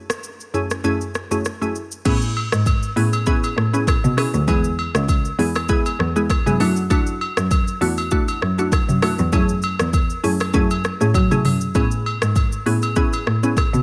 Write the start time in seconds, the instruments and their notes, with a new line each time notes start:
Already playing: synth pluck F#2 A3 C#4 E4 G#4
0.10 cross-stick, shaker
0.24 shaker
0.40 shaker
0.54 synth pluck F#2 A3 C#4 E4 G#4, shaker
0.70 cross-stick, shaker
0.84 synth pluck F#2 A3 C#4 E4 G#4, shaker
1.01 shaker
1.15 cross-stick, shaker
1.31 synth pluck F#2 A3 C#4 E4 G#4, shaker
1.45 cross-stick, shaker
1.61 synth pluck F#2 A3 C#4 E4 G#4, shaker
1.75 shaker
1.91 shaker
2.05 cello A2, synth pluck B3 C#4 E4 G#4, kick, crash, high agogo, shaker
2.22 shaker
2.37 high agogo
2.52 cello G#2, cross-stick, shaker
2.66 kick, high agogo, shaker
2.83 shaker
2.96 cello A2, synth pluck B3 C#4 E4 G#4, open hi-hat
3.13 high agogo, shaker
3.26 synth pluck B3 C#4 E4 G#4, kick, shaker
3.44 high agogo, shaker
3.57 cello A2, cross-stick
3.73 synth pluck B3 C#4 E4 G#4, shaker
3.87 kick, cross-stick, high agogo, shaker
4.04 cello B2, mid tom, shaker
4.17 synth pluck B3 C#4 E4 G#4, cross-stick, open hi-hat, high agogo
4.34 cello D2, shaker
4.48 cello E2, synth pluck G#3 B3 E4 G#4, kick, high agogo, shaker
4.64 shaker
4.79 high agogo
4.95 cello C#2, cross-stick, shaker
5.08 kick, high agogo, shaker
5.25 shaker
5.39 cello E2, synth pluck G#3 B3 E4 G#4, open hi-hat
5.55 cross-stick, high agogo, shaker
5.69 synth pluck G#3 B3 E4 G#4, kick, shaker
5.86 high agogo, shaker
5.99 cello E2, cross-stick
6.16 synth pluck G#3 B3 E4 G#4, shaker
6.30 kick, cross-stick, high agogo, shaker
6.46 cello F#2, synth pluck G#3 B3 E4 G#4, mid tom, shaker
6.60 cello F#2, synth pluck A3 D4 E4 F#4, open hi-hat, high agogo
6.76 shaker
6.90 synth pluck A3 D4 E4 F#4, kick, high agogo, shaker
7.07 shaker
7.21 high agogo
7.37 cello F#2, cross-stick, shaker
7.51 kick, high agogo, shaker
7.68 shaker
7.81 cello E2, synth pluck A3 D4 E4 F#4, open hi-hat
7.97 high agogo, shaker
8.11 synth pluck A3 D4 E4 F#4, kick, shaker
8.28 high agogo, shaker
8.42 cello F#2, cross-stick
8.58 synth pluck A3 D4 E4 F#4, shaker
8.72 kick, cross-stick, high agogo, shaker
8.89 cello F#2, mid tom, shaker
9.02 synth pluck A3 D4 E4 F#4, cross-stick, open hi-hat, high agogo
9.18 cello E2, shaker
9.33 cello F#2, synth pluck A3 C#4 E4 G#4, kick, high agogo, shaker
9.49 shaker
9.62 high agogo, shaker
9.79 cello E2, cross-stick, shaker
9.93 kick, high agogo, shaker
10.10 shaker
10.24 cello F#2, synth pluck A3 C#4 E4 G#4, open hi-hat, shaker
10.40 cross-stick, high agogo, shaker
10.54 cello F#2, synth pluck A3 C#4 E4 G#4, kick, shaker
10.71 high agogo, shaker
10.84 cross-stick, shaker
11.01 cello A2, synth pluck A3 C#4 E4 G#4, shaker
11.14 cello F#3, kick, high agogo, shaker
11.31 synth pluck A3 C#4 E4 G#4, mid tom, shaker
11.45 cello F#2, mid tom, open hi-hat, high agogo
11.61 shaker
11.75 cello A2, synth pluck B3 C#4 E4 G#4, kick, high agogo, shaker
11.91 shaker
12.06 high agogo
12.22 cello G#2, cross-stick, shaker
12.36 kick, high agogo, shaker
12.52 shaker
12.66 cello A2, synth pluck B3 C#4 E4 G#4, open hi-hat
12.82 high agogo, shaker
12.96 synth pluck B3 C#4 E4 G#4, kick, shaker
13.13 high agogo, shaker
13.27 cello A2, cross-stick
13.43 synth pluck B3 C#4 E4 G#4, shaker
13.57 kick, cross-stick, high agogo, shaker
13.74 cello B2, mid tom, shaker